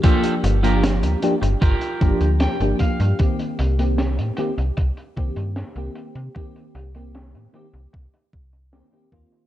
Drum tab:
HH |xxxxxxxxxxxxxxxx|xxxxxxxxxxxxxxxx|xxxxxxxxxxxxxxxx|
SD |----o-------o---|----o-------o---|----o-------o---|
BD |o-------o-o---o-|o-------o-o-----|o-------o-o---o-|